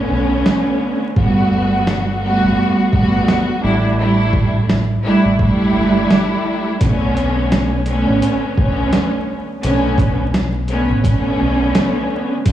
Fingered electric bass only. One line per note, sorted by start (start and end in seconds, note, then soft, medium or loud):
0.11 0.40 B1 medium
1.17 2.39 G1 loud
2.43 2.55 F#1 medium
2.93 3.22 G1 medium
3.64 4.96 A1 loud
5.25 5.38 A1 medium
5.76 6.04 G1 medium
6.81 8.03 B1 loud
8.08 8.20 A1 medium
8.58 8.87 B1 medium
9.64 10.86 B1 loud
10.90 11.02 A1 loud
11.40 11.69 B1 medium